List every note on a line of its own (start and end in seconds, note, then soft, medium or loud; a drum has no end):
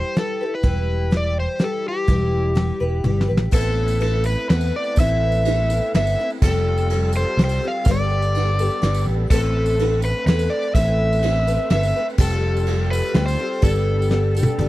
0.00 0.63 E3 medium
0.00 0.15 G3 medium
0.00 0.16 E4 soft
0.00 0.16 G4 medium
0.00 0.18 B4 medium
0.00 0.15 C5 medium
0.16 0.40 G3 medium
0.16 0.40 E4 medium
0.16 0.41 G4 medium
0.16 0.55 A4 medium
0.16 0.40 B4 medium
0.16 snare medium
0.16 closed hi-hat medium
0.41 0.63 E4 soft
0.41 0.63 G4 soft
0.41 0.63 B4 soft
0.55 1.16 B4 medium
0.63 1.46 E1 medium
0.63 2.07 E3 medium
0.63 1.10 G3 medium
0.63 1.12 E4 medium
0.63 1.12 G4 medium
0.63 1.13 B4 medium
0.63 kick loud
0.63 closed hi-hat medium
1.11 1.58 G3 medium
1.11 1.60 E4 medium
1.11 1.60 G4 medium
1.11 1.61 B4 medium
1.11 snare medium
1.11 closed hi-hat medium
1.17 1.37 D5 medium
1.40 1.63 C5 medium
1.59 2.07 G3 medium
1.59 2.08 E4 medium
1.59 2.08 G4 medium
1.59 2.09 B4 medium
1.59 snare medium
1.59 closed hi-hat medium
1.64 1.87 A4 medium
1.88 3.27 G4 medium
2.08 2.70 E1 loud
2.08 2.57 E3 medium
2.08 2.54 G3 medium
2.08 2.54 E4 medium
2.08 2.56 G4 medium
2.08 2.56 B4 medium
2.08 kick loud
2.08 closed hi-hat medium
2.55 2.80 G3 medium
2.55 2.81 E4 medium
2.55 2.80 G4 medium
2.55 2.79 B4 medium
2.55 snare medium
2.55 closed hi-hat medium
2.80 3.03 E1 medium
2.80 3.04 E4 soft
2.80 3.04 G4 soft
2.80 3.05 B4 medium
3.04 3.26 G1 medium
3.04 3.29 G3 medium
3.04 3.29 E4 medium
3.04 3.28 G4 medium
3.04 3.27 B4 medium
3.04 high tom medium
3.21 snare medium
3.28 3.51 A1 medium
3.28 3.52 E4 soft
3.28 3.52 G4 soft
3.28 3.53 B4 medium
3.37 snare medium
3.51 4.35 A1 loud
3.51 4.00 A2 medium
3.51 4.01 E3 medium
3.51 6.38 A3 medium
3.51 3.99 B3 medium
3.51 4.01 C4 medium
3.51 4.00 E4 medium
3.51 4.02 A4 medium
3.51 4.01 A4 medium
3.51 6.38 B4 medium
3.51 kick loud
3.51 crash loud
3.51 tambourine loud
3.64 tambourine soft
3.88 tambourine medium
4.00 4.49 B3 medium
4.00 4.51 C4 medium
4.00 4.50 E4 medium
4.00 4.26 A4 medium
4.00 4.52 A4 medium
4.00 ride medium
4.24 4.48 B4 medium
4.24 tambourine medium
4.49 4.70 E2 loud
4.49 4.97 B3 medium
4.49 4.99 C4 medium
4.49 4.98 E4 medium
4.49 4.99 A4 medium
4.49 4.75 B4 medium
4.49 snare medium
4.49 ride medium
4.61 tambourine medium
4.76 5.00 D5 loud
4.84 tambourine soft
4.96 5.79 A1 loud
4.96 5.46 A2 medium
4.96 5.46 E3 medium
4.96 5.45 B3 medium
4.96 5.47 C4 medium
4.96 5.46 E4 medium
4.96 5.49 A4 medium
4.96 kick loud
4.96 ride medium
4.96 tambourine medium
5.00 5.91 E5 loud
5.08 tambourine soft
5.32 tambourine medium
5.45 5.70 B3 medium
5.45 5.70 C4 medium
5.45 5.70 E4 medium
5.45 ride medium
5.49 5.69 A4 medium
5.70 5.93 B3 medium
5.70 5.94 C4 medium
5.70 5.95 E4 medium
5.70 5.94 A4 medium
5.70 tambourine medium
5.94 6.15 G1 loud
5.94 6.18 B3 medium
5.94 6.19 C4 medium
5.94 6.19 E4 medium
5.94 6.18 A4 medium
5.94 6.29 E5 medium
5.94 snare medium
5.94 ride medium
6.07 tambourine medium
6.19 6.44 B3 soft
6.19 6.44 C4 soft
6.19 6.43 E4 soft
6.19 6.43 A4 soft
6.30 tambourine soft
6.41 7.24 F1 loud
6.41 6.91 F3 medium
6.41 7.84 G3 medium
6.41 6.91 G3 medium
6.41 6.91 C4 medium
6.41 7.85 F4 medium
6.41 6.93 G4 loud
6.41 9.28 A4 medium
6.41 7.11 A4 loud
6.41 kick loud
6.41 tambourine medium
6.41 crash loud
6.46 6.93 A4 medium
6.55 tambourine soft
6.78 tambourine medium
6.90 7.15 G3 medium
6.90 7.16 C4 medium
6.90 7.16 G4 medium
6.90 7.16 A4 medium
6.90 ride medium
7.13 7.40 C5 loud
7.13 tambourine medium
7.17 7.40 C4 soft
7.17 7.40 G4 soft
7.17 7.40 A4 medium
7.37 7.58 C2 loud
7.37 7.64 G3 medium
7.37 7.64 C4 medium
7.37 snare medium
7.37 ride medium
7.42 7.63 G4 medium
7.42 7.61 A4 medium
7.42 7.66 C5 medium
7.49 tambourine medium
7.62 7.88 C4 soft
7.62 7.87 G4 soft
7.62 7.86 A4 soft
7.68 7.90 F5 loud
7.84 8.68 G1 loud
7.84 9.29 G3 medium
7.84 8.35 G3 medium
7.84 9.28 B3 medium
7.84 kick loud
7.84 ride medium
7.84 tambourine loud
7.88 8.35 B3 medium
7.88 8.35 D4 medium
7.88 8.36 G4 medium
7.88 8.37 A4 medium
7.88 9.05 D5 loud
8.10 tambourine soft
8.22 tambourine medium
8.34 8.59 B3 medium
8.34 8.59 D4 medium
8.34 8.60 G4 medium
8.34 8.59 A4 medium
8.34 ride medium
8.59 8.83 D4 soft
8.59 8.83 G4 medium
8.59 8.83 A4 medium
8.59 tambourine medium
8.71 tambourine soft
8.82 9.04 G1 loud
8.82 9.32 B3 medium
8.82 9.31 D4 medium
8.82 9.31 G4 medium
8.82 9.33 A4 medium
8.82 snare medium
8.82 ride medium
8.94 tambourine medium
9.06 9.28 A1 medium
9.29 10.12 A1 loud
9.29 9.80 A2 medium
9.29 9.80 E3 medium
9.29 12.16 A3 medium
9.29 9.79 A3 medium
9.29 12.16 C4 medium
9.29 9.79 C4 medium
9.29 9.99 A4 medium
9.29 9.81 A4 medium
9.29 12.16 B4 medium
9.29 kick loud
9.29 tambourine loud
9.29 crash loud
9.34 9.80 B4 medium
9.66 tambourine medium
9.79 10.26 A3 medium
9.79 10.27 C4 medium
9.79 10.28 A4 medium
9.79 10.28 B4 medium
9.79 ride medium
10.02 10.26 B4 loud
10.02 tambourine medium
10.26 10.47 E2 loud
10.26 10.76 A3 medium
10.26 10.76 C4 medium
10.26 10.76 A4 medium
10.26 10.49 B4 medium
10.26 10.75 B4 medium
10.26 snare medium
10.26 ride medium
10.39 tambourine medium
10.50 10.73 D5 loud
10.63 tambourine soft
10.75 11.56 A1 loud
10.75 11.23 A2 medium
10.75 11.23 E3 medium
10.75 11.22 A3 medium
10.75 11.23 C4 medium
10.75 11.24 A4 medium
10.75 11.24 B4 loud
10.75 11.70 E5 loud
10.75 kick loud
10.75 ride medium
10.75 tambourine medium
10.88 tambourine soft
11.13 tambourine medium
11.22 11.47 A3 medium
11.22 11.47 C4 medium
11.22 11.46 A4 medium
11.22 11.46 B4 medium
11.22 ride medium
11.47 11.71 A3 soft
11.47 11.71 C4 soft
11.47 11.71 A4 medium
11.47 11.71 B4 medium
11.47 tambourine medium
11.70 11.91 G1 loud
11.70 11.96 A3 medium
11.70 11.96 C4 medium
11.70 11.95 A4 medium
11.70 12.05 E5 loud
11.70 snare medium
11.70 ride medium
11.74 11.95 B4 medium
11.83 tambourine medium
11.96 12.18 A3 soft
11.96 12.18 C4 soft
11.96 12.18 A4 soft
11.96 12.19 B4 soft
12.10 tambourine soft
12.18 13.01 F1 loud
12.18 12.67 F3 medium
12.18 14.69 G3 medium
12.18 12.66 G3 medium
12.18 12.66 C4 medium
12.18 13.62 F4 medium
12.18 12.69 G4 medium
12.18 14.69 A4 medium
12.18 12.69 A4 loud
12.18 12.88 A4 medium
12.18 kick loud
12.18 crash loud
12.18 tambourine loud
12.33 tambourine soft
12.57 tambourine medium
12.66 13.14 G3 medium
12.66 13.14 C4 medium
12.66 13.15 G4 medium
12.66 13.17 A4 medium
12.66 ride medium
12.91 13.15 B4 loud
12.91 tambourine loud
13.14 13.35 D2 loud
13.14 13.39 G3 medium
13.14 13.39 C4 medium
13.14 13.38 G4 medium
13.14 13.37 A4 medium
13.14 13.26 B4 medium
13.14 snare medium
13.14 ride medium
13.26 13.60 C5 loud
13.26 tambourine medium
13.38 13.62 C4 soft
13.38 13.61 G4 soft
13.38 13.62 A4 medium
13.53 tambourine soft
13.62 14.45 G1 loud
13.62 14.11 G3 medium
13.62 14.08 B3 medium
13.62 14.69 B3 medium
13.62 14.09 D4 medium
13.62 14.10 G4 medium
13.62 14.11 A4 loud
13.62 14.69 A4 medium
13.62 kick loud
13.62 ride medium
13.62 tambourine loud
14.02 tambourine medium
14.09 14.35 B3 medium
14.09 14.35 D4 medium
14.09 14.36 G4 medium
14.09 14.34 A4 medium
14.09 snare medium
14.14 tambourine soft
14.35 14.58 D4 soft
14.35 14.59 G4 medium
14.35 14.59 A4 medium
14.35 tambourine loud
14.43 high tom medium
14.50 tambourine soft
14.58 14.69 G1 loud
14.58 14.69 B3 medium
14.58 14.69 D4 medium
14.58 14.69 G4 medium
14.58 14.69 A4 medium
14.58 mid tom medium
14.58 tambourine soft